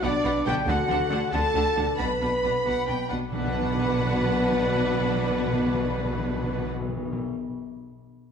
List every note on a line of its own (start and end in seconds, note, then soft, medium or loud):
0.00 0.10 B1 medium
0.00 0.60 B2 medium
0.00 0.11 B2 loud
0.00 0.52 B3 medium
0.00 0.10 D4 medium
0.00 0.46 D4 loud
0.00 0.57 F#4 medium
0.00 0.67 B4 medium
0.00 0.10 B4 medium
0.00 0.44 D5 loud
0.00 0.46 D5 loud
0.00 0.11 F#5 medium
0.04 0.46 D5 loud
0.24 0.32 B1 medium
0.24 0.32 B2 loud
0.24 0.33 D4 medium
0.24 0.33 B4 medium
0.24 0.32 F#5 medium
0.45 0.53 B1 loud
0.45 0.54 B2 loud
0.45 0.56 D4 medium
0.45 0.56 G4 loud
0.45 0.56 B4 medium
0.45 0.55 F#5 medium
0.45 0.53 G5 loud
0.45 0.70 G5 loud
0.45 0.71 G5 loud
0.49 1.92 D3 medium
0.54 1.84 D4 medium
0.59 1.89 F#4 medium
0.63 0.75 D2 loud
0.63 1.31 F#4 loud
0.63 1.98 A4 medium
0.63 1.31 F#5 loud
0.67 0.75 D3 loud
0.67 0.77 D4 medium
0.67 0.78 A4 loud
0.67 1.33 F#5 loud
0.67 0.77 F#5 loud
0.67 1.33 F#5 loud
0.89 0.97 D2 loud
0.89 0.97 D3 loud
0.89 1.00 D4 medium
0.89 0.99 A4 medium
0.89 0.98 F#5 medium
1.10 1.18 D2 loud
1.10 1.18 D3 loud
1.10 1.20 D4 medium
1.10 1.20 A4 medium
1.10 1.19 F#5 medium
1.31 1.40 D2 loud
1.31 1.41 D3 loud
1.31 1.43 D4 medium
1.31 1.98 A4 loud
1.31 1.42 A4 medium
1.31 1.41 F#5 medium
1.31 1.97 A5 loud
1.31 1.98 A5 loud
1.31 2.01 A5 loud
1.54 1.62 D2 medium
1.54 1.63 D3 medium
1.54 1.64 D4 medium
1.54 1.63 A4 medium
1.54 1.64 F#5 medium
1.76 1.85 D2 medium
1.76 1.84 D3 medium
1.76 1.85 D4 medium
1.76 1.85 A4 medium
1.76 1.85 F#5 medium
1.81 3.25 B2 medium
1.86 3.44 D4 medium
1.90 3.52 F#4 medium
1.95 2.07 B2 medium
1.95 2.06 D4 medium
1.95 3.58 B4 medium
1.95 2.06 B4 medium
1.95 2.06 F#5 medium
1.95 3.08 B5 loud
1.99 2.07 B1 medium
1.99 3.09 B4 loud
1.99 3.11 B5 loud
1.99 3.09 B5 medium
2.21 2.30 B1 medium
2.21 2.29 B2 medium
2.21 2.29 D4 medium
2.21 2.30 B4 medium
2.21 2.29 F#5 medium
2.43 2.51 B1 medium
2.43 2.52 B2 medium
2.43 2.51 D4 medium
2.43 2.51 B4 medium
2.43 2.53 F#5 medium
2.66 2.74 B1 medium
2.66 2.74 B2 medium
2.66 2.74 D4 medium
2.66 2.74 B4 medium
2.66 2.87 F#5 medium
2.86 2.96 B1 medium
2.86 2.97 B2 medium
2.86 2.94 D4 medium
2.86 2.94 B4 medium
2.86 3.10 G5 medium
3.09 3.18 B1 medium
3.09 3.20 B2 medium
3.09 3.17 D4 medium
3.09 3.17 B4 medium
3.09 3.17 F#5 medium
3.30 6.69 B1 medium
3.30 7.22 B2 medium
3.30 3.40 B2 medium
3.30 6.69 B2 medium
3.30 6.68 D4 medium
3.30 6.68 B4 medium
3.30 6.69 B4 loud
3.30 6.70 B4 loud
3.30 6.69 F#5 medium
3.30 6.69 B5 medium
3.39 3.47 B2 medium
3.39 7.21 B3 medium
3.46 3.55 B2 loud
3.46 7.28 D4 medium
3.53 3.62 B2 medium
3.53 7.35 F#4 medium
3.60 3.70 B2 loud
3.60 7.42 B4 medium
3.67 3.77 B2 loud
3.67 7.49 F#5 medium
3.77 3.85 B2 loud
3.85 3.92 B2 loud
3.92 3.99 B2 loud
3.99 4.07 B2 loud
4.07 4.14 B2 loud
4.14 4.22 B2 loud
4.22 4.29 B2 loud
4.29 4.36 B2 loud
4.36 4.44 B2 loud
4.44 4.52 B2 loud
4.52 4.60 B2 loud
4.60 4.67 B2 medium
4.67 4.75 B2 loud
4.75 4.83 B2 medium
4.83 4.90 B2 loud
4.91 4.99 B2 medium
4.99 5.06 B2 loud
5.07 5.15 B2 medium
5.15 5.22 B2 loud
5.22 5.29 B2 loud
5.29 5.37 B2 loud
5.37 5.45 B2 loud
5.45 5.53 B2 loud
5.53 5.60 B2 medium
5.60 5.68 B2 loud
5.68 5.74 B2 loud
5.74 5.81 B2 loud
5.81 5.89 B2 loud
5.89 5.97 B2 loud
5.97 6.05 B2 medium
6.05 6.13 B2 loud
6.13 6.20 B2 loud
6.20 6.28 B2 loud
6.28 6.36 B2 medium
6.36 6.43 B2 loud
6.43 6.51 B2 medium
6.51 6.59 B2 medium
6.59 6.66 B2 medium
6.66 6.74 B2 loud
6.74 6.81 B2 medium
6.81 6.89 B2 loud
6.89 6.96 B2 loud
6.97 7.05 B2 loud
7.05 7.12 B2 medium
7.12 7.20 B2 loud